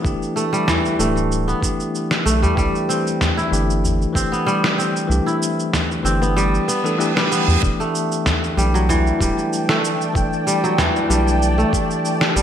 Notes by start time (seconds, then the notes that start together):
Already playing: E3 G3 A3 B3
0.02 G1 E3 A3 D4 G4, kick, shaker
0.22 shaker
0.36 A3, shaker
0.53 G3, shaker
0.68 E3, snare, udu, shaker
0.85 shaker
0.98 D1 E3 A3 D4 G4, shaker
1.17 shaker
1.32 shaker
1.48 B3, shaker
1.61 E3 A3 D4, kick, shaker
1.65 G4
1.80 shaker
1.95 shaker
2.11 snare, shaker
2.25 B1 A3, shaker
2.42 G3, udu, shaker
2.55 C2 E3 G3 A3 D4 G4, kick, shaker
2.75 shaker
2.89 C4, shaker
3.07 shaker
3.21 snare, udu, shaker
3.37 E4, shaker
3.51 G1 E3 A3 D4 G4, shaker
3.70 shaker
3.84 udu, shaker
4.02 shaker
4.13 G1 E3 A3 C4 D4 G4, kick, shaker
4.32 B3, shaker
4.46 G3, shaker
4.64 snare, shaker
4.78 C4, shaker
4.96 shaker
5.07 C2 E3 A3 D4, shaker
5.11 G4
5.26 E4, shaker
5.42 shaker
5.59 shaker
5.73 snare, udu, shaker
5.91 shaker
6.03 G1 E3 A3 C4 D4 G4, shaker
6.22 B3, shaker
6.36 G3, reverse cymbal, shaker
6.54 shaker
6.68 B3, shaker
6.83 E3 A3 D4 A4, shaker
6.98 E3 A3 D4 G4, shaker
7.15 E3 G3 A3 D4 G4, snare, shaker
7.31 B3, shaker
7.48 E2, udu, shaker
7.60 E1 E3 A3 D4 G4 D5 G5 A5, kick, shaker
7.80 A3, shaker
7.95 shaker
8.12 shaker
8.26 snare, udu, shaker
8.44 shaker
8.57 B1 E3 G3 A3 D4 G5, shaker
8.74 F#3, shaker
8.89 E3, udu, shaker
9.07 shaker
9.18 D1 E3 G3 A3 D4, kick, shaker
9.23 G5
9.38 shaker
9.53 shaker
9.69 A3, snare, shaker
9.85 shaker
10.01 shaker
10.13 E1 E3 A3 D4 G5, kick, shaker
10.33 shaker
10.47 G3, shaker
10.64 F#3, shaker
10.78 E3, snare, udu, shaker
10.96 shaker
11.09 B1 E3 G3 A3 D4 G5, shaker
11.28 shaker
11.42 shaker
11.58 A3, shaker
11.71 E3 A3 D4, kick, shaker
11.75 G4
11.91 shaker
12.05 shaker
12.21 snare, shaker
12.36 A1 G3, shaker